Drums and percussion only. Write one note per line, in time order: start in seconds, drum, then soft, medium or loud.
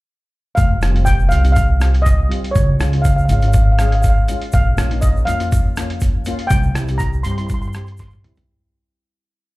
0.57 kick loud
0.57 closed hi-hat medium
0.57 shaker medium
0.82 cross-stick medium
0.82 closed hi-hat medium
0.82 shaker medium
0.96 closed hi-hat medium
1.06 kick medium
1.06 closed hi-hat medium
1.06 shaker medium
1.20 shaker soft
1.31 closed hi-hat medium
1.31 shaker medium
1.44 closed hi-hat medium
1.44 shaker soft
1.56 kick loud
1.56 closed hi-hat medium
1.56 shaker medium
1.81 cross-stick medium
1.81 closed hi-hat medium
1.81 shaker medium
1.94 closed hi-hat medium
2.06 kick medium
2.06 closed hi-hat medium
2.06 shaker medium
2.31 closed hi-hat medium
2.44 closed hi-hat medium
2.55 kick loud
2.55 closed hi-hat medium
2.55 shaker medium
2.80 cross-stick medium
2.80 closed hi-hat medium
2.80 shaker medium
2.93 closed hi-hat medium
3.05 kick medium
3.05 closed hi-hat medium
3.05 shaker medium
3.18 shaker soft
3.29 closed hi-hat medium
3.29 shaker medium
3.42 closed hi-hat medium
3.42 shaker soft
3.53 kick loud
3.53 closed hi-hat medium
3.53 shaker medium
3.79 cross-stick medium
3.79 closed hi-hat medium
3.79 shaker medium
3.92 closed hi-hat medium
4.03 kick medium
4.03 closed hi-hat medium
4.03 shaker medium
4.28 closed hi-hat medium
4.28 shaker medium
4.42 closed hi-hat medium
4.52 kick loud
4.52 closed hi-hat medium
4.52 shaker medium
4.78 cross-stick medium
4.78 closed hi-hat medium
4.78 shaker medium
4.91 closed hi-hat medium
5.02 kick medium
5.02 closed hi-hat medium
5.02 shaker medium
5.17 shaker soft
5.27 closed hi-hat medium
5.27 shaker medium
5.40 closed hi-hat medium
5.40 shaker soft
5.52 kick loud
5.52 closed hi-hat medium
5.52 shaker medium
5.76 cross-stick medium
5.76 closed hi-hat medium
5.76 shaker medium
5.90 closed hi-hat medium
6.00 kick medium
6.00 closed hi-hat medium
6.00 shaker medium
6.25 closed hi-hat medium
6.25 shaker medium
6.39 closed hi-hat medium
6.50 kick loud
6.50 closed hi-hat medium
6.50 shaker medium
6.63 shaker soft
6.75 cross-stick medium
6.75 closed hi-hat medium
6.75 shaker medium
6.88 closed hi-hat medium
6.88 shaker soft
6.99 kick medium
6.99 closed hi-hat medium
6.99 shaker medium
7.13 shaker soft
7.24 closed hi-hat medium
7.24 shaker medium
7.38 closed hi-hat medium
7.38 shaker soft
7.49 kick loud
7.49 closed hi-hat medium
7.49 shaker medium
7.62 shaker soft
7.73 cross-stick medium
7.73 closed hi-hat medium
7.73 shaker medium
7.86 closed hi-hat soft
7.86 shaker soft
7.97 kick medium
7.97 snare medium
7.97 closed hi-hat medium
7.97 shaker medium
8.11 high tom medium
8.11 shaker soft
8.24 closed hi-hat medium
8.24 mid tom medium
8.37 closed hi-hat medium
8.37 floor tom medium